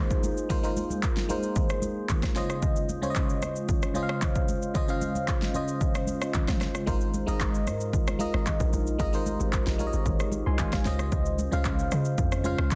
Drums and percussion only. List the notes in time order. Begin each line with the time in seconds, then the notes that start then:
0.11 kick, shaker
0.23 high conga, shaker
0.37 shaker
0.50 kick, low conga, shaker
0.64 shaker
0.77 high conga, shaker
0.90 high conga, shaker
1.03 kick, clap, shaker
1.17 snare, shaker
1.30 high conga, shaker
1.43 shaker
1.56 kick, low conga, shaker
1.70 cross-stick, shaker
1.82 high conga, shaker
2.09 kick, clap, low conga, shaker
2.23 kick, cross-stick, snare, shaker
2.36 snare, high conga, shaker
2.50 cross-stick, shaker
2.62 kick, low conga, shaker
2.76 shaker
2.89 high conga, shaker
3.03 high conga, shaker
3.15 kick, clap, shaker
3.30 shaker
3.42 cross-stick, high conga, shaker
3.56 shaker
3.69 kick, low conga, shaker
3.82 cross-stick, shaker
3.94 high conga, shaker
4.09 cross-stick
4.22 kick, clap, low conga, shaker
4.35 kick, shaker
4.48 high conga, shaker
4.62 shaker
4.75 kick, low conga, shaker
4.89 shaker
5.01 high conga, shaker
5.15 high conga, shaker
5.28 kick, clap, shaker
5.42 snare, shaker
5.55 high conga, shaker
5.68 shaker
5.81 kick, low conga, shaker
5.95 cross-stick, shaker
6.07 high conga, shaker
6.22 cross-stick, shaker
6.34 kick, clap, low conga, shaker
6.48 kick, cross-stick, snare, mid tom, shaker
6.61 cross-stick, snare, high conga, shaker
6.75 cross-stick, shaker
6.87 kick, low conga, shaker
7.01 shaker
7.14 high conga, shaker
7.28 high conga, shaker
7.40 kick, clap, shaker
7.55 shaker
7.67 cross-stick, high conga, shaker
7.81 shaker
7.93 kick, low conga, shaker
8.07 cross-stick, shaker
8.19 high conga, shaker
8.34 cross-stick
8.46 kick, clap, low conga, shaker
8.60 kick, shaker
8.73 high conga, shaker
8.87 shaker
8.99 kick, low conga, shaker
9.13 shaker
9.26 high conga, shaker
9.40 high conga, shaker
9.53 kick, clap, shaker
9.67 snare, shaker
9.79 high conga, shaker
9.93 shaker
10.06 kick, low conga, shaker
10.20 cross-stick, shaker
10.32 high conga, shaker
10.59 kick, clap, low conga, shaker
10.72 kick, cross-stick, snare, shaker
10.85 snare, high conga, shaker
10.99 cross-stick, shaker
11.12 kick, low conga, shaker
11.26 shaker
11.39 high conga, shaker
11.52 high conga, shaker
11.65 kick, clap, shaker
11.79 shaker
11.92 cross-stick, high conga, shaker
12.05 shaker
12.18 kick, low conga, shaker
12.32 cross-stick, shaker
12.44 high conga, shaker
12.58 cross-stick
12.71 kick, clap, low conga, shaker